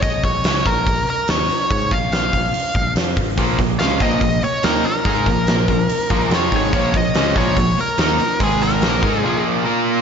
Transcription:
0.02 A#1 D#5, kick, open hi-hat
0.23 A#1 C#5, kick, open hi-hat
0.44 C#2, snare, open hi-hat
0.66 A#1 A#4, kick, open hi-hat
0.86 A#1, kick, open hi-hat
1.07 A#4, open hi-hat
1.28 D#2 C#5, snare, open hi-hat
1.49 muted picked electric bass stroke, open hi-hat
1.71 G#2 C#5, kick, open hi-hat
1.91 A#1 F5, kick, snare, open hi-hat
2.12 A#1 F5, snare, open hi-hat
2.33 A#1, kick, open hi-hat
2.54 open hi-hat
2.75 A#1, kick
2.96 F2, snare, open hi-hat
3.17 G#1, kick, open hi-hat
3.37 A#1 A#2 F3 A#3, kick, open hi-hat
3.58 A#1 A#2 F3, kick, snare, open hi-hat
3.79 C#2 C#3 G#3 C#4 F5, snare, open hi-hat
4.00 A#1 A#2 F3 A#3 D#5, kick, open hi-hat
4.21 A#1 A#2 F3, kick, open hi-hat
4.42 C#5, muted picked electric bass stroke, muted distorted electric guitar stroke, muted overdriven electric guitar stroke, open hi-hat
4.63 D#2 D#3 A#3 D#4 A#4, snare, open hi-hat
4.84 A#4, muted picked electric bass stroke, muted overdriven electric guitar stroke, muted distorted electric guitar stroke, open hi-hat
5.05 G#2 G#3 D#4 G#4, kick, open hi-hat
5.26 A#1 A#2 F3, kick, snare, open hi-hat
5.47 A#1 A#2 F3, snare, open hi-hat
5.68 A#1 A#2 F3, kick, open hi-hat
5.89 open hi-hat
6.10 A#1 A#2 F3 A#3, kick
6.31 F2 F3 C4 F4 C#5, snare, open hi-hat
6.52 G#1 G#2 D#3 G#3, kick, open hi-hat
6.56 C#5
6.73 A#1 A#2 F3 A#3, kick, open hi-hat
6.94 A#1 A#2 F3 D#5, kick, open hi-hat
7.14 C#2 C#3 G#3 C#4, snare, open hi-hat
7.34 A#1 A#2 F3 A#3 C#5, kick, open hi-hat
7.56 A#1 A#2 F3 C#5, kick, open hi-hat
7.77 A#4, muted overdriven electric guitar stroke, muted distorted electric guitar stroke, open hi-hat
7.98 D#2 D#3 A#3 D#4 A#4, snare, open hi-hat
8.19 muted distorted electric guitar stroke, muted overdriven electric guitar stroke, muted picked electric bass stroke, open hi-hat
8.40 G#1 G#2 D#3 G#3 G#4, kick, open hi-hat
8.61 A#4, snare, open hi-hat
8.82 A#1 A#2 F3 A#3, snare, open hi-hat
9.02 G#2 G#3 D#4 G#4, kick, open hi-hat
9.20 G#4
9.25 A#2 F3 A#3
9.66 A#3 F4 A#4

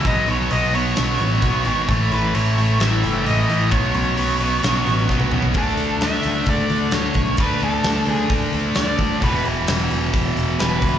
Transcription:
0.04 B1 B2 F#3 B3 D#5, kick, open hi-hat
0.28 B1 D#4 C#5, open hi-hat
0.50 B1 B2 F#3 B3 F#4 D#5, open hi-hat
0.73 B2 F#3 B3 C#5, open hi-hat
0.95 B1 B2 F#3 B3 D#4, snare, open hi-hat
1.19 A1 F#4 C#5, open hi-hat
1.42 B1 B2 F#3 B3, kick, open hi-hat
1.65 G#1 B2 F#3 B3 D#4, open hi-hat
1.88 A1 A2 E3 A3 C#5, kick, open hi-hat
2.12 A1 E4 B4, open hi-hat
2.34 A1 A2 E3 A3 A4 C#5, open hi-hat
2.57 A2 E3 A3, open hi-hat
2.79 A1 A2 E3 A3 E4 E5, snare, open hi-hat
3.03 F#1 A4, open hi-hat
3.25 A1 A2 E3 A3 D#5, open hi-hat
3.48 A1 A2 E3 A3 E4, open hi-hat
3.70 B1 B2 F#3 B3 C#5, kick, open hi-hat
3.94 B1 C#4, open hi-hat
4.16 B1 B2 F#3 B3 F#4, open hi-hat
4.39 B2 F#3 B3, open hi-hat
4.63 B1 B2 F#3 B3 C#4, snare, open hi-hat
4.86 A1 F#4, open hi-hat
5.09 B1 B2 F#3 B3, kick, snare
5.20 high tom
5.32 B1 B2 F#3 B3 C#4, mid tom
5.42 floor tom
5.54 D2 D3 A3 D4 A4, kick, open hi-hat
5.77 D2, open hi-hat
6.01 D2 E5, snare, open hi-hat
6.23 D2, open hi-hat
6.46 D2 D5, kick, open hi-hat
6.70 D2, open hi-hat
6.91 D2 C#5, snare, open hi-hat
7.05 snare
7.14 B1, kick, open hi-hat
7.37 D2 D3 A3 B4, kick, open hi-hat
7.42 D4
7.60 D2 A4, open hi-hat
7.84 D2, snare, open hi-hat
8.06 D2 G#4, open hi-hat
8.30 D2, kick, open hi-hat
8.53 D2, open hi-hat
8.75 D2 D5, snare, open hi-hat
8.99 D2, kick, open hi-hat
9.20 E1 E2 B2 E3 B4, kick, open hi-hat
9.45 E1, open hi-hat
9.67 E1, snare, open hi-hat
9.91 E1, open hi-hat
10.14 E1, kick, open hi-hat
10.37 E1, open hi-hat
10.60 E1 B4, snare, open hi-hat
10.82 C#2, kick, open hi-hat

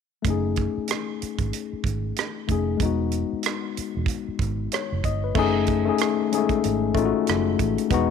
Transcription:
0.22 F#1 A3 C#4, kick, closed hi-hat
0.27 D#4 G#4
0.56 kick, closed hi-hat
0.78 muted fingered electric bass stroke
0.88 cross-stick, closed hi-hat
1.22 muted fingered electric bass stroke, closed hi-hat
1.39 G#1, kick, closed hi-hat
1.53 closed hi-hat
1.73 muted fingered electric bass stroke
1.84 G#1, kick, closed hi-hat
2.16 cross-stick, closed hi-hat
2.48 F1 A3 C#4 D#4 G#4, kick, closed hi-hat
2.77 E1 G#3 B3, kick, closed hi-hat
2.83 D#4 F#4
3.12 closed hi-hat
3.33 muted fingered electric bass stroke
3.43 cross-stick, closed hi-hat
3.77 muted fingered electric bass stroke, closed hi-hat
3.97 E1
4.06 kick, closed hi-hat
4.28 muted fingered electric bass stroke
4.39 G#1, kick, closed hi-hat
4.72 C#5, cross-stick, closed hi-hat
4.92 F#1
5.04 G1 D#5, kick, closed hi-hat
5.24 B4
5.35 F#1 A3 C#4 D#4, kick, crash
5.39 G#4
5.67 kick, closed hi-hat
5.85 A3 C#4 D#4 G#4
5.98 cross-stick, closed hi-hat
6.31 G#3 C#4 D#4 G#4, closed hi-hat
6.37 A3
6.49 kick, closed hi-hat
6.64 G#1, closed hi-hat
6.95 A1 A3 C#4 D#4 F4, kick, closed hi-hat
7.05 F#4
7.27 F#1, cross-stick, closed hi-hat
7.59 A1, kick, closed hi-hat
7.78 closed hi-hat
7.90 E1 G#3 B3 D#4 F#4, kick, closed hi-hat

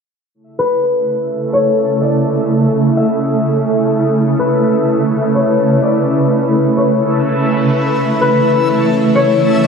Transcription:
0.35 C#3 A3 C#4 E4 A4 E5
0.59 B4
1.53 C#5
2.02 D5
2.97 E5
4.16 B4
4.39 B4
5.35 C#5
5.82 D5
6.77 C#5
7.97 C#3 E3 A3 C#4 E4 A4 E5
8.21 B4
9.15 C#5
9.64 D5

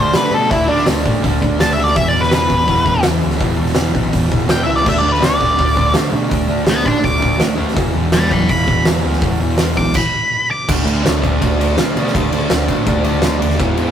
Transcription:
Already playing: D2 D3 A3 D4 D5
0.14 D3 A3 D4 B4, snare, open hi-hat
0.32 B2 D3 A3 D4 A4
0.48 D2 D3 A3 D4 E4, kick, open hi-hat
0.67 D2 D3 A3 D4
0.77 snare
0.86 D2 D3 A3 D4, snare, open hi-hat
1.04 A2 D3 A3 D4, kick
1.23 D2 D3 A3 D4, kick, open hi-hat
1.41 D2 D3 A3 D4, kick
1.59 D2 D3 A3 D4 A5, snare, open hi-hat
1.73 D3 E5
1.77 D2 A3 D4
1.84 D5, snare
1.95 E1 E2 B2 E3 E5, kick, open hi-hat
2.08 D5
2.14 E1 E2 B2 E3
2.21 B4, snare
2.32 E1 E2 B2 E3 B4, snare, open hi-hat
2.49 E2 B2 E3, kick
2.66 E1 E2 B2 E3, kick, open hi-hat
2.84 E2 B2 E3, kick
3.02 E2 B2 E3, snare, open hi-hat
3.07 E2
3.20 D2 E2 B2 E3
3.31 snare
3.37 E2 B2 E3, kick, open hi-hat
3.42 E1
3.57 E1 E2 B2 E3
3.67 snare
3.75 E1 E2 B2 E3, snare, open hi-hat
3.93 B1 E2 B2 E3, kick
4.12 E1 E2 B2 E3, kick, open hi-hat
4.29 E1 E2 B2 E3, kick
4.46 E1 E2 B2 E3, snare, open hi-hat
4.51 G5
4.63 E2 B2 E3 E5
4.68 C#2
4.76 D5, snare
4.83 D2 D3 A3 D4, kick, crash
4.89 E5
4.98 D3 A3 D4 D5
5.04 D2
5.12 B4, snare
5.19 D2 D3 A3 D4, snare, open hi-hat
5.24 D5
5.38 D3 A3 D4, kick
5.56 D2 D3 A3 D4, kick, open hi-hat
5.74 D3 A3 D4, kick
5.93 D3 A3 D4, snare, open hi-hat
6.11 B2 D3 A3 D4
6.29 D2 D3 A3 D4, kick, open hi-hat
6.47 D2 D3 A3 D4
6.64 D2 D3 A3 D4, snare, open hi-hat
6.69 F#5 B5
6.83 A2 D3 A3 D4 A5, kick
6.88 D6
6.99 D3 A3 D4, open hi-hat
7.04 D2 D6, kick
7.19 D3 A3 D4, kick
7.24 D2
7.38 D2 D3 A3 D4, snare, open hi-hat
7.56 D2 D3 A3 D4
7.68 snare
7.74 E1 E2 B2 E3, kick, open hi-hat
7.93 E1 E2 B2 E3
8.12 E1 E2 B2 E3 G5 B5, snare, open hi-hat
8.30 E2 B2 E3 B5 D6, kick
8.48 E1 E2 B2 E3 B5, kick, open hi-hat
8.66 E2 B2 E3, kick
8.84 E2 B2 E3, snare, open hi-hat
9.02 D2 E2 B2 E3
9.13 snare
9.21 E1 E2 B2 E3, kick, open hi-hat
9.39 E1 E2 B2 E3
9.57 E1 E2 B2 E3, snare, open hi-hat
9.76 B1 E2 B2 E3 D6, kick
9.94 B5, kick, crash
10.51 D6
10.69 D2 D3 A3 D4, kick, crash
10.85 D2 D3 A3 D4, ride
11.04 D2 D3 A3 D4, snare, ride
11.21 D3 A3 D4, kick, ride
11.41 D2 D3 A3 D4, kick, ride
11.60 D3 A3 D4, ride
11.76 D3 A3 D4, snare, ride
11.96 B2 D3 A3 D4, ride
12.07 snare
12.14 D2 D3 A3 D4, kick, ride
12.31 D2 D3 A3 D4, ride
12.50 D2 D3 A3 D4, snare, ride
12.60 snare
12.68 A2 D3 A3 D4, kick, ride
12.86 D2 D3 A3 D4, kick, ride
13.03 D2 D3 A3 D4, ride
13.21 D2 D3 A3 D4, snare, ride
13.38 D#2 D3 A3 D4
13.42 ride
13.50 snare
13.58 E1 E2 B2 E3, kick, ride
13.76 E1 E2 B2 E3, ride

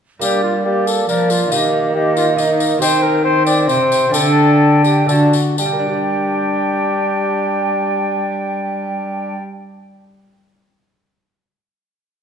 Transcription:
0.19 G3 A#3 D4 G4, tambourine
0.23 D5
0.44 F4
0.65 A#3 G4 D5
0.87 A4, tambourine
1.08 F3 A#3 A#4 D5, tambourine
1.30 F4, tambourine
1.50 D#3 A#3 D#4 G4 D#5, tambourine
1.95 A#3 G4 D#5
2.16 F4, tambourine
2.36 A#3 D#4 D#5, tambourine
2.60 tambourine
2.78 D#3 C4 G4 C5 G5, tambourine
3.03 A#4
3.24 C4 C5 G5
3.47 D5, tambourine
3.66 C3 C4 G4 C5 G5, tambourine
3.92 tambourine
4.09 A3 D4 G4 G5
4.13 D3 D4 A4, tambourine
4.84 G4, tambourine
5.05 D3 A3 D4 F#4 A4 A5, tambourine
5.33 tambourine
5.58 G2 G3 D4 G4 G5, tambourine
5.65 G3
5.73 A#3
5.79 D4
5.86 G4
5.93 D5

